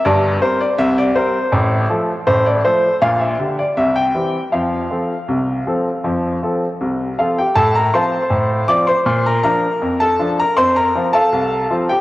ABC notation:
X:1
M:2/4
L:1/16
Q:1/4=80
K:F
V:1 name="Upright piano"
d2 c d e d c2 | z4 c d c2 | f e2 d e g3 | f8- |
f6 [Ff] [Gg] | [Aa] [Bb] [cac']4 [dd'] [cc']- | [cc'] [Bb] [Bb]3 [Aa]2 [Bb] | [cc'] [Bb]2 [Afa]4 [Gg] |]
V:2 name="Upright piano" clef=bass
[G,,,G,,]2 [G,CB]2 [C,,C,]2 [G,CB]2 | [A,,,A,,]2 [F,A,A]2 [A,,,A,,]2 [F,A,A]2 | [B,,,B,,]2 [D,DG]2 [C,,C,]2 [E,CG]2 | [F,,F,]2 [F,CA]2 [C,,C,]2 [F,CA]2 |
[F,,F,]2 [F,CA]2 [C,,C,]2 [F,CA]2 | A,,2 [F,CF]2 A,,2 [F,CF]2 | B,,2 [F,DF]2 F,,2 [F,DF]2 | F,,2 [F,CF]2 C,,2 [F,CF]2 |]